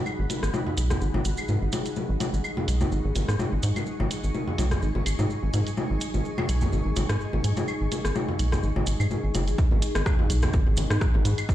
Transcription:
Already playing: synth texture F#3 F#4, ambient pad D#4 G#4 F#5 B5
0.06 claves, maracas
0.19 analog synth bass G#1
0.30 closed hi-hat, low bongo, maracas
0.43 analog synth bass G#1, cross-stick, maracas
0.54 low bongo, maracas
0.67 low conga
0.77 analog synth bass B1, closed hi-hat, maracas
0.90 cross-stick, low bongo, low conga, maracas
1.01 analog synth bass G#1, maracas
1.14 analog synth bass G#1, low bongo
1.25 analog synth bass G#1, closed hi-hat, maracas
1.37 claves, maracas
1.48 analog synth bass G#2, low bongo, maracas
1.62 analog synth bass G#1
1.72 closed hi-hat, low bongo, maracas
1.86 closed hi-hat, maracas
1.96 synth texture G#3, low bongo, maracas
2.09 analog synth bass G#1
2.20 closed hi-hat, low bongo, maracas
2.25 ambient pad C#6
2.33 analog synth bass G#1, maracas
2.44 claves, maracas
2.57 low bongo, low conga
2.68 analog synth bass B1, closed hi-hat, maracas
2.80 low bongo, low conga, maracas
2.92 analog synth bass G#1, maracas
3.05 analog synth bass G#1
3.15 analog synth bass G#1, closed hi-hat, low bongo, maracas
3.28 analog synth bass G#2, cross-stick, maracas
3.39 low bongo, maracas
3.52 analog synth bass G#1
3.63 analog synth bass G#2, ambient pad G#5, closed hi-hat, maracas
3.76 closed hi-hat, low bongo, claves, maracas
3.86 maracas
4.00 analog synth bass G#1, low bongo
4.11 closed hi-hat, maracas
4.24 analog synth bass G#1, maracas
4.35 low bongo, maracas
4.48 low conga
4.58 analog synth bass B1, closed hi-hat, low bongo, maracas
4.71 cross-stick, low conga, maracas
4.82 analog synth bass G#1, maracas
4.95 analog synth bass G#1, low bongo
5.06 analog synth bass G#1, closed hi-hat, claves, maracas
5.19 analog synth bass G#2, low bongo, maracas
5.30 maracas
5.43 analog synth bass G#1
5.53 analog synth bass G#2, closed hi-hat, low bongo, maracas
5.67 closed hi-hat, maracas
5.77 low bongo, maracas
5.90 analog synth bass G#1
6.01 closed hi-hat, maracas
6.14 analog synth bass G#1, low bongo, maracas
6.25 maracas
6.38 low bongo, low conga, claves
6.49 analog synth bass B1, closed hi-hat, maracas
6.61 low conga, maracas
6.73 analog synth bass G#1, low bongo, maracas
6.86 analog synth bass G#1
6.96 analog synth bass G#1, closed hi-hat, low bongo, maracas
7.09 analog synth bass G#2, cross-stick, maracas
7.21 maracas
7.33 analog synth bass G#1, low bongo
7.44 analog synth bass G#2, closed hi-hat, maracas
7.57 closed hi-hat, low bongo, maracas
7.68 claves, maracas
7.81 analog synth bass G#1
7.92 closed hi-hat, low bongo, maracas
8.05 analog synth bass G#1, cross-stick, maracas
8.15 low bongo, maracas
8.29 low conga
8.39 analog synth bass B1, closed hi-hat, maracas
8.52 cross-stick, low bongo, low conga, maracas
8.63 analog synth bass G#1, maracas
8.76 analog synth bass G#1, low bongo
8.86 analog synth bass G#1, closed hi-hat, maracas
9.00 analog synth bass G#2, claves, maracas
9.11 low bongo, maracas
9.24 analog synth bass G#1
9.34 analog synth bass F#1, closed hi-hat, low bongo, maracas
9.48 analog synth bass G#1, closed hi-hat, maracas
9.58 kick, maracas
9.71 analog synth bass G#1, low bongo
9.82 closed hi-hat, maracas
9.87 ambient pad F#5
9.95 analog synth bass G#1, cross-stick, maracas
10.06 kick, cross-stick, low bongo, claves, maracas
10.19 low conga
10.30 analog synth bass B1, ambient pad B5, closed hi-hat, maracas
10.42 cross-stick, low bongo, low conga, maracas
10.53 analog synth bass G#1, kick, maracas
10.67 analog synth bass G#1
10.77 analog synth bass G#1, closed hi-hat, low bongo, maracas
10.90 analog synth bass G#2, cross-stick, maracas
11.01 kick, cross-stick, maracas
11.14 analog synth bass G#1, low bongo
11.25 analog synth bass G#2, closed hi-hat, maracas
11.38 closed hi-hat, claves, maracas
11.49 kick, low bongo, maracas

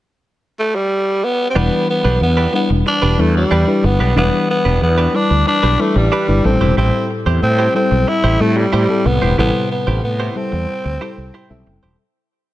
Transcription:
0.59 tenor saxophone A3
0.75 tenor saxophone G3
1.24 tenor saxophone B3
1.50 tenor saxophone C4
1.55 fretless electric bass E1, fm electric piano E3 G3 D4 E4 B4, tenor saxophone B3, clean electric guitar D4 G4 B4
1.88 tenor saxophone B3, muted clean electric guitar stroke
2.04 fretless electric bass B1, clean electric guitar D4 G4 B4
2.21 fretless electric bass E2, tenor saxophone B3
2.37 clean electric guitar D4 G4 B4
2.53 fm electric piano G3 D4 E4 B4, tenor saxophone B3, muted clean electric guitar stroke
2.70 fretless electric bass E1, muted clean electric guitar stroke
2.86 tenor saxophone D4, muted clean electric guitar stroke
3.02 fretless electric bass E1, clean electric guitar D4 G4 B4
3.18 fretless electric bass E2, fm electric piano G3 D4 E4 B4, tenor saxophone A3, muted clean electric guitar stroke
3.35 tenor saxophone G3, muted clean electric guitar stroke
3.51 fretless electric bass E2, clean electric guitar D4 G4 B4
3.67 fm electric piano G3 D4 E4 B4, muted clean electric guitar stroke
3.83 fretless electric bass G1, tenor saxophone B3, muted clean electric guitar stroke
4.00 fretless electric bass B1, clean electric guitar D4 G4 B4
4.16 fretless electric bass E1, fm electric piano E3 G3 D4 E4 B4, tenor saxophone B3, clean electric guitar D4 G4 B4
4.49 tenor saxophone B3, muted clean electric guitar stroke
4.65 fretless electric bass E1, clean electric guitar D4 G4 B4
4.82 fretless electric bass E2, tenor saxophone B3, muted clean electric guitar stroke
4.98 clean electric guitar D4 G4 B4
5.13 fm electric piano G3 D4 E4 B4, tenor saxophone D4, muted clean electric guitar stroke
5.30 fretless electric bass D2, muted clean electric guitar stroke
5.47 tenor saxophone D4, muted clean electric guitar stroke
5.63 fretless electric bass B1, clean electric guitar D4 G4 B4
5.79 fm electric piano G3 D4 E4 B4, tenor saxophone A3, muted clean electric guitar stroke
5.96 fretless electric bass A1, tenor saxophone G3, muted clean electric guitar stroke
6.12 clean electric guitar D4 G4 B4
6.28 fretless electric bass G1, fm electric piano G3 D4 E4 B4, muted clean electric guitar stroke
6.44 fretless electric bass A1, fm electric piano A2 G3 C4 E4 A4, tenor saxophone C4, muted clean electric guitar stroke
6.61 fretless electric bass E1, clean electric guitar E4 G4 C5
6.77 fretless electric bass A1, tenor saxophone C4, clean electric guitar E4 G4 C5
7.10 muted clean electric guitar stroke
7.26 fretless electric bass E2, clean electric guitar E4 G4 C5
7.42 fretless electric bass A2, tenor saxophone C4, muted clean electric guitar stroke
7.59 clean electric guitar E4 G4 C5
7.74 fm electric piano G3 C4 E4 A4, tenor saxophone C4, muted clean electric guitar stroke
7.91 fretless electric bass B1, muted clean electric guitar stroke
8.08 tenor saxophone E4, muted clean electric guitar stroke
8.24 fretless electric bass A1, clean electric guitar E4 G4 C5
8.40 fretless electric bass A2, fm electric piano G3 C4 E4 A4, tenor saxophone A3
8.56 tenor saxophone G3, muted clean electric guitar stroke
8.73 fretless electric bass A2, clean electric guitar E4 G4 C5
8.89 fm electric piano G3 C4 E4 A4, muted clean electric guitar stroke
9.05 fretless electric bass C2, fm electric piano A2, tenor saxophone B3, muted clean electric guitar stroke
9.22 fretless electric bass E1, clean electric guitar E4 G4 C5
9.38 fretless electric bass A1, fm electric piano C3 G3 E4 A4, tenor saxophone B3, clean electric guitar E4 G4 C5
9.71 tenor saxophone B3, muted clean electric guitar stroke
9.87 fretless electric bass A1, clean electric guitar E4 G4 C5
10.03 fretless electric bass A2, tenor saxophone B3, muted clean electric guitar stroke
10.20 clean electric guitar E4 G4 C5
10.36 fm electric piano G3 C4 E4 A4, tenor saxophone C4, muted clean electric guitar stroke
10.52 fretless electric bass E2, muted clean electric guitar stroke
10.85 fretless electric bass D2, muted clean electric guitar stroke
11.01 fm electric piano G3 C4 E4 A4, clean electric guitar E4 G4 C5
11.18 fretless electric bass C2, muted clean electric guitar stroke
11.34 clean electric guitar E4 G4 C5, fm electric piano G5
11.50 fretless electric bass B1, fm electric piano G3 C4 E4 A4 E5, muted clean electric guitar stroke
11.67 fretless electric bass F#1, muted clean electric guitar stroke
11.83 fretless electric bass E1, clean electric guitar E4 G4 C5

